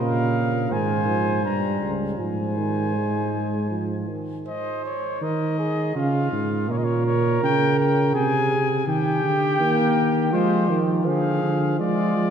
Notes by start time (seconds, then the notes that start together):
Already playing: A#2 A#4
0.00 C#3 F5
0.71 G#2 D#3 C5 G#5
1.07 F3
1.44 G2 G3 A#5
1.81 C#2
2.19 G#2 F3 C5 G#5
2.57 D#3
2.95 G#3
3.71 F3
4.09 D#3
4.47 C5 D#5
4.86 C#5
5.21 D#3 A#4 D#5
5.59 G#4
5.95 C#3 F4 F5
6.32 G#2
6.69 A#2 A#4 C#5
6.78 D#5
6.84 C#5
7.06 C#5
7.42 C#3 G5
7.80 G5
8.14 C3 G#4 G#5
8.87 D#3 G4 G5
9.24 D3
9.60 D#3 A#3
10.32 F3 G#3 F4 C5
10.70 D#3
11.06 D3 F3 G#4 F5
11.43 D3
11.79 F3 G#3 F4 D5
12.16 F3